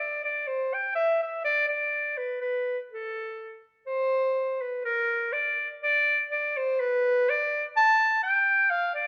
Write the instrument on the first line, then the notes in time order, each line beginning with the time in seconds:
clarinet
0.00 D5
0.24 D5
0.47 C5
0.74 G5
0.95 E5
1.22 E5
1.44 D5
1.68 D5
2.17 B4
2.41 B4
2.92 A4
3.86 C5
4.61 B4
4.85 A#4
5.32 D5
5.83 D5
6.31 D5
6.57 C5
6.80 B4
7.30 D5
7.77 A5
8.23 G5
8.70 F5
8.94 D5